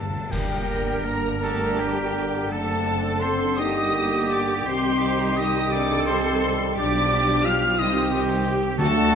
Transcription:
Already playing: G1 G2 A3 A4 A5
0.02 G2
0.10 G2
0.17 G2
0.29 G1 G2 D3 G3 A#3 D4 G4 A#4 G5, concert bass drum, crash
1.03 A#3 A#4 A#5
1.07 A#5
1.43 A3 D4 G4 A4 A5
1.79 G3 G4 G5
2.49 F#1 A3 C4 D4 A4 A5
3.20 C4 C5 C6
3.57 G1 A#3 D#4 G4 D#5 D#6
4.29 D4 D5 D6
4.64 C2 D#3 G3 C4 D#4 G4 C5 C6
5.01 D6
5.10 C6
5.19 A#5
5.27 C6
5.36 D#4 D#5 D#6
5.71 C4 D4 A4 D5 D6
6.06 C4 C5 C6
6.76 B1 F3 D4 G4 D5 D6
7.44 F4 F5 F6
7.78 C2 D#3 C4 D#4 F4 G4 D#5 D#6
8.13 D#4
8.46 G4
8.78 D2 D3 F#3 A3 D4 F#4 A4 A5
8.97 A3 A4

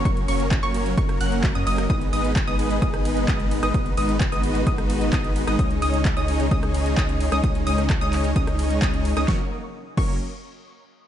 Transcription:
Already playing: A#2 C#3 F#3 C#4 F#4
0.05 F#1 F#3 A#3 C#4 A#4 C#5 C#6, kick, closed hi-hat
0.17 closed hi-hat
0.28 F#1 F#3 A#3 C#4 A#4 C#5 C#6, open hi-hat, ride
0.40 closed hi-hat
0.51 kick, clap, closed hi-hat
0.63 F#1 F#3 A#3 C#4 A#4 C#5 C#6, closed hi-hat
0.74 open hi-hat, ride
0.86 closed hi-hat
0.97 F#1 F#3 A#3 C#4 A#4 C#5 C#6, kick, closed hi-hat
1.09 cross-stick, closed hi-hat
1.21 F#1 F#3 A#3 C#4 A#4 F#5 F#6, open hi-hat, ride
1.32 closed hi-hat
1.44 kick, clap, closed hi-hat
1.55 F#2 F#3 A#3 C#4 A#4 D#5 D#6, closed hi-hat
1.67 F#1 F#3 A#3 C#4 A#4 D#5 D#6, open hi-hat, ride
1.78 cross-stick, closed hi-hat
1.90 G#1 B2 D#3 G#3 B3 D#4 G#4 B4 D#5 D#6, kick, closed hi-hat
2.01 closed hi-hat
2.13 G#1 G#3 B3 D#4 B4 D#5 D#6, open hi-hat, ride
2.25 closed hi-hat
2.36 kick, clap, closed hi-hat
2.47 G#1 G#3 B3 D#4 B4 D#5 D#6, closed hi-hat
2.59 open hi-hat, ride
2.71 closed hi-hat
2.82 G#1 G#3 B3 D#4 B4 D#5 D#6, kick, closed hi-hat
2.94 cross-stick, closed hi-hat
3.05 open hi-hat, ride
3.17 closed hi-hat
3.28 G#1 G#3 B3 D#4 B4 D#5 D#6, kick, clap, closed hi-hat
3.40 closed hi-hat
3.51 open hi-hat, ride
3.63 G#1 G#3 B3 D#4 B4 D#5 D#6, cross-stick, closed hi-hat
3.74 G#1 G#3 B3 D#4 F#4 B4 D#5 D#6, kick, closed hi-hat
3.86 closed hi-hat
3.97 G#1 G#3 B3 D#4 B4 D#5 D#6, open hi-hat, ride
4.09 closed hi-hat
4.20 kick, clap, closed hi-hat
4.32 G#1 G#3 B3 D#4 B4 D#5 D#6, closed hi-hat
4.43 open hi-hat, ride
4.55 closed hi-hat
4.67 G#1 G#3 B3 D#4 B4 D#5 D#6, kick, closed hi-hat
4.78 cross-stick, closed hi-hat
4.90 open hi-hat, ride
5.01 closed hi-hat
5.13 G#1 G#3 B3 D#4 B4 D#5 D#6, kick, clap, closed hi-hat
5.24 closed hi-hat
5.36 open hi-hat, ride
5.47 G#1 G#3 B3 D#4 B4 D#5 D#6, cross-stick, closed hi-hat
5.59 C#2 C#3 G#3 C#4 D#4 G#4 C#5 D#5 D#6, kick, closed hi-hat
5.71 closed hi-hat
5.82 C#2 G#3 C#4 D#4 C#5 D#5 D#6, open hi-hat, ride
5.94 closed hi-hat
6.05 kick, clap, closed hi-hat
6.17 C#2 G#3 C#4 D#4 C#5 D#5 D#6, closed hi-hat
6.28 open hi-hat, ride
6.40 closed hi-hat
6.51 C#2 G#3 C#4 D#4 C#5 D#5 D#6, kick, closed hi-hat
6.63 cross-stick, closed hi-hat
6.74 open hi-hat, ride
6.86 closed hi-hat
6.97 C#2 G#3 C#4 D#4 C#5 D#5 D#6, kick, clap, closed hi-hat
7.09 closed hi-hat
7.20 open hi-hat, ride
7.32 C#2 G#3 C#4 D#4 C#5 D#5 D#6, cross-stick, closed hi-hat
7.44 C#2 G#3 C#4 D#4 C#5 D#5 D#6, kick, closed hi-hat
7.55 closed hi-hat
7.67 C#2 G#3 C#4 D#4 C#5 D#5 D#6, open hi-hat, ride
7.78 cross-stick, closed hi-hat
7.90 kick, clap, closed hi-hat
8.01 C#2 G#3 C#4 D#4 C#5 D#5 D#6, closed hi-hat
8.13 clap, open hi-hat, ride
8.24 closed hi-hat
8.36 C#2 G#3 C#4 D#4 C#5 D#5 D#6, kick, closed hi-hat
8.47 cross-stick, closed hi-hat
8.59 open hi-hat, ride
8.70 closed hi-hat
8.82 C#2 G#3 C#4 D#4 C#5 D#5 D#6, kick, clap, closed hi-hat
8.94 closed hi-hat
9.05 open hi-hat, ride
9.17 C#2 G#3 C#4 D#4 C#5 D#5 D#6, cross-stick, closed hi-hat
9.28 F#1 C#3 F#3 A#3 C#4 F#4 A#4 C#5 C#6, kick, snare
9.97 F#1 F#3 A#3 C#4 A#4 C#5 C#6, kick, crash

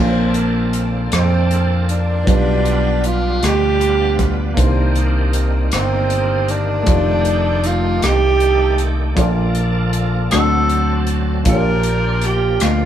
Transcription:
Already playing: A#1 A#2 A#3 C4 D4 F4 A4
0.05 C5
0.34 closed hi-hat
0.73 closed hi-hat
1.12 F2 C4, cross-stick, closed hi-hat
1.51 closed hi-hat
1.89 D4, closed hi-hat
2.24 B1 B2 B3 D4 F4, kick
2.28 G3 B3 F4 G4 D5, closed hi-hat
2.65 closed hi-hat
3.04 F4, closed hi-hat
3.43 D2 G4, cross-stick, closed hi-hat
3.81 closed hi-hat
4.19 kick, closed hi-hat
4.54 C2 C3 D#3 A#3 C4 D4, kick, closed hi-hat
4.58 G4 C5
4.96 closed hi-hat
5.33 closed hi-hat
5.72 G1 C4, cross-stick, closed hi-hat
6.10 closed hi-hat
6.49 D4, closed hi-hat
6.83 D#3 A3 F4, closed hi-hat
6.87 F1 D4 G4 D5, kick
7.25 closed hi-hat
7.64 F4, cross-stick, closed hi-hat
8.02 C2 G4, cross-stick, closed hi-hat
8.40 closed hi-hat
8.78 closed hi-hat
9.14 A#1 A#2 F3 A#3 D4 F4 A4 D5, kick, closed hi-hat
9.55 closed hi-hat
9.93 closed hi-hat
10.31 D2 D3 F#3 C4 D4 F#4 A4 D5, cross-stick, closed hi-hat
10.70 closed hi-hat
11.07 closed hi-hat
11.43 A#1 A#2 F3 A#3 D4 F4 G4, kick, closed hi-hat
11.48 G4 A#4 C#5
11.55 D5
11.83 closed hi-hat
12.22 cross-stick, closed hi-hat
12.26 G4
12.60 D2 F4, cross-stick, closed hi-hat

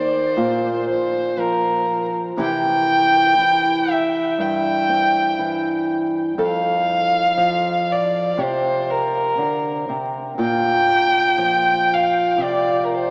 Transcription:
Already playing: D#3 A#3 G4 C5
0.37 A#2 F4
0.90 C5
1.37 F3 A#4
2.37 C3 E3 C4 E4 G4 G5
3.38 E3
3.91 E5
4.38 G2 G5
4.89 C4
5.39 E3
6.38 F2 A4
6.43 F5
7.37 F3
7.92 D5
8.37 C3 G4 C5
8.90 A#4
9.38 D3
9.89 C3
10.38 A#2 F4 G5
11.38 F3
11.93 F5
12.38 C3 F4
12.43 D5
12.84 A#4
12.94 C5

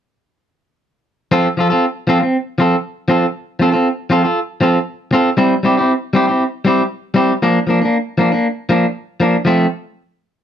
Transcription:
1.32 F3 C4 F4 A4
1.57 F3 F4 A4
1.70 C4 F4 A4
2.07 F3 C4 F4 A4
2.21 C4, muted clean electric guitar stroke
2.58 F3 C4 F4 A4
3.08 F3 C4 F4 A4
3.59 F3 C4 F4 A4
3.72 C4 F4 A4
4.10 F3 C4 F4 A4
4.24 F4 A4
4.61 F3 C4 F4 A4
5.11 C4 F4 A4, muted clean electric guitar stroke
5.37 G3 C4 E4, muted clean electric guitar stroke
5.63 G3 C4 E4 G4
5.77 C4 E4 G4
6.13 G3 C4 E4 G4
6.28 C4 E4 G4
6.65 G3 C4 E4 G4
7.14 G3 C4 E4 G4
7.42 F3 A#3 D4
7.67 F3 A#3 D4
7.82 A#3 D4
8.18 F3 A#3 D4
8.32 A#3 D4
8.69 F3 A#3 D4
9.20 F3 A#3 D4
9.45 F3 A3 C4

